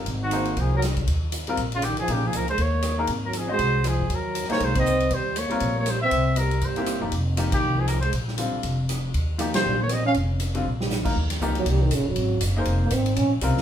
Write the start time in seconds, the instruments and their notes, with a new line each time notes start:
0.06 upright bass G#1, kick, ride
0.21 trombone D#3, trumpet F#4
0.31 grand piano A#3 D#4 G#4 C5, hi-hat pedal, ride
0.45 ride
0.57 upright bass C2, trombone F3, trumpet G#4, kick, ride
0.74 trombone F#3, trumpet A#4
0.82 cross-stick, snare, hi-hat pedal, ride
0.97 kick, ride
1.07 upright bass D#2, kick, ride
1.32 hi-hat pedal, ride
1.47 grand piano G3 C4 F4 A#4, ride
1.57 upright bass A#1, kick, ride
1.72 trombone C#3, trumpet F4, ride
1.82 trombone D#3, trumpet G4, cross-stick, hi-hat pedal, ride
1.97 trombone F3, trumpet G#4, muted upright bass stroke, ride
2.08 upright bass A#1, trombone C#3, grand piano F3 A#3 D#4 G#4, trumpet G4, kick, ride
2.25 trombone F3, trumpet G#4
2.33 upright bass C#2, trombone F3, hi-hat pedal, ride
2.37 trumpet A#4
2.48 trombone G#3, trumpet C5, ride
2.58 upright bass D#2, trombone A#3, kick, ride
2.62 trumpet C#5
2.82 cross-stick, hi-hat pedal, ride
2.98 grand piano A#3 D#4 G#4 A#4
3.07 upright bass G#1, kick, ride
3.25 trombone F#3, trumpet A#4
3.33 trombone F3, hi-hat pedal, ride
3.38 trumpet G#4
3.47 trombone G#3, grand piano C#4 F#4 C5 D#5
3.52 trumpet C5
3.59 upright bass C2, kick, ride
3.84 trombone F3, trumpet G#4, cross-stick, hi-hat pedal, ride
3.99 upright bass G1
4.09 upright bass D#2, trombone F#3, kick, ride
4.15 trumpet A#4
4.35 hi-hat pedal, ride
4.44 snare
4.49 trombone A#3, grand piano A#3 D#4 G#4 C5, trumpet C#5, muted upright bass stroke, snare, ride
4.60 upright bass C2, trombone G#3, kick, ride
4.65 trumpet C5
4.75 trombone C4, trumpet D#5, kick, ride
4.86 hi-hat pedal
5.00 ride
5.10 upright bass D#2, trombone G3, trumpet C5, kick, ride
5.36 trombone A#3, trumpet C#5, hi-hat pedal, ride
5.50 grand piano G3 C4 F4 A#4, muted upright bass stroke, ride
5.60 upright bass A#1, kick, ride
5.78 trombone A#3, trumpet C#5
5.86 trombone G3, cross-stick, hi-hat pedal, ride
5.90 trumpet C5
6.01 trombone C4, trumpet E5
6.11 upright bass C2, kick, ride
6.36 trombone G3, trumpet A#4, hi-hat pedal, ride
6.51 ride
6.61 upright bass G1, trombone G3, trumpet C5, kick, ride
6.76 grand piano A#3 C4 E4 G4, ride
6.86 cross-stick, hi-hat pedal, ride
7.01 upright bass G1, grand piano F3 A#3 D#4 G4
7.12 upright bass F1, kick, ride
7.37 grand piano F3 A#3 D#4 G4, hi-hat pedal, ride
7.52 upright bass D#2, trombone D#3, trumpet G4, kick, ride
7.63 upright bass C2
7.78 trombone F3, trumpet G#4
7.88 trombone F3, trumpet A#4, cross-stick, hi-hat pedal, ride
8.00 trombone G#3, trumpet C5, ride
8.13 upright bass A#1, kick, ride
8.28 snare
8.38 grand piano D3 G3 C4 F4, hi-hat pedal, ride
8.54 muted upright bass stroke
8.63 upright bass F1, kick, ride
8.89 cross-stick, hi-hat pedal, ride
9.14 upright bass D#2, kick, ride
9.38 grand piano F3 A#3 D#4 G4, hi-hat pedal, ride
9.54 trombone G3, trumpet C5, snare, ride
9.66 upright bass A#1
9.80 trombone A#3, trumpet C#5
9.89 trombone C4, cross-stick, hi-hat pedal, ride
9.93 trumpet D#5
10.05 trombone C#4, trumpet F5
10.14 upright bass F1, kick, ride
10.40 hi-hat pedal, ride
10.54 grand piano D3 G3 C4 F4, ride
10.66 upright bass A#1
10.80 snare
10.90 snare, hi-hat pedal
11.04 grand piano F3 A#3 D#4 A#4, muted upright bass stroke, kick, crash
11.16 upright bass D#2, kick
11.30 snare, ride
11.41 upright bass C#2, grand piano F3 A#3 D#4 G4, kick, hi-hat pedal
11.55 trombone F#3, ride
11.65 upright bass C2, trombone G3, kick, ride
11.82 trombone D#3
11.91 upright bass A#1, trombone C#3, kick, hi-hat pedal, ride
11.99 upright bass G1
12.08 upright bass D#1, trombone F#3
12.16 upright bass G#1, kick, ride
12.41 upright bass F#1, kick, hi-hat pedal, ride
12.56 grand piano A#3 D#4 G#4 C5
12.65 upright bass F1, kick, ride
12.83 trombone A#3
12.90 upright bass G#1, trombone C4, kick, hi-hat pedal, ride
13.06 ride
13.16 upright bass A#1, trombone C#4, kick, ride
13.41 upright bass C2, grand piano G3 C4 F4 A#4, kick, hi-hat pedal, ride
13.57 snare